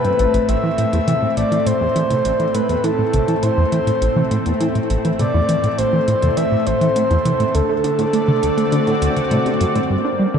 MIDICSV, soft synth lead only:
0, 0, Header, 1, 2, 480
1, 0, Start_track
1, 0, Key_signature, 0, "minor"
1, 0, Tempo, 588235
1, 397, Time_signature, 4, 2, 24, 8
1, 8477, End_track
2, 0, Start_track
2, 0, Title_t, "Soft synth lead"
2, 0, Program_c, 0, 80
2, 0, Note_on_c, 0, 71, 100
2, 395, Note_off_c, 0, 71, 0
2, 400, Note_on_c, 0, 76, 107
2, 1086, Note_off_c, 0, 76, 0
2, 1119, Note_on_c, 0, 74, 96
2, 1358, Note_on_c, 0, 72, 103
2, 1370, Note_off_c, 0, 74, 0
2, 2078, Note_on_c, 0, 71, 84
2, 2090, Note_off_c, 0, 72, 0
2, 2318, Note_on_c, 0, 69, 95
2, 2330, Note_off_c, 0, 71, 0
2, 2798, Note_on_c, 0, 72, 88
2, 2810, Note_off_c, 0, 69, 0
2, 3758, Note_off_c, 0, 72, 0
2, 4238, Note_on_c, 0, 74, 109
2, 4717, Note_on_c, 0, 72, 101
2, 4729, Note_off_c, 0, 74, 0
2, 5197, Note_on_c, 0, 76, 111
2, 5209, Note_off_c, 0, 72, 0
2, 5437, Note_on_c, 0, 72, 114
2, 5449, Note_off_c, 0, 76, 0
2, 6158, Note_on_c, 0, 69, 97
2, 6170, Note_off_c, 0, 72, 0
2, 7598, Note_off_c, 0, 69, 0
2, 8477, End_track
0, 0, End_of_file